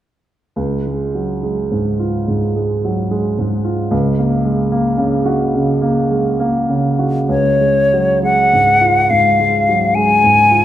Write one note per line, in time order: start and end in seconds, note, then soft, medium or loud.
0.56 2.24 C#2 soft
0.86 1.32 G#3 soft
1.15 1.43 F#3 soft
1.43 1.88 G#3 soft
1.71 2.16 G#2 soft
1.99 2.44 F4 soft
2.28 2.73 G#2 soft
2.56 3.00 G#3 soft
2.84 3.11 F#3 soft
3.11 3.54 G#3 soft
3.38 3.81 G#2 soft
3.65 3.92 F4 soft
3.91 5.50 C#2 soft
4.19 4.62 A#3 soft
4.45 4.72 G#3 soft
4.72 5.15 A#3 soft
4.98 5.43 C#3 soft
5.26 5.71 F#4 soft
5.54 6.00 C#3 soft
5.82 6.28 A#3 soft
6.11 6.40 G#3 soft
6.40 6.88 A#3 soft
6.70 7.18 C#3 soft
6.99 7.30 F#4 soft
7.29 9.07 C#2 soft
7.29 8.20 C#5 soft
7.60 8.12 G#3 soft
7.93 8.24 F#3 soft
8.23 8.71 G#3 soft
8.23 9.12 F#5 medium
8.53 8.99 G#2 soft
8.81 9.28 F4 soft
9.10 9.57 G#2 soft
9.10 9.96 F5 soft
9.39 9.85 G#3 soft
9.69 9.96 F#3 soft
9.95 10.40 G#3 soft
9.95 10.65 G#5 medium
10.24 10.65 G#2 soft
10.51 10.65 F4 soft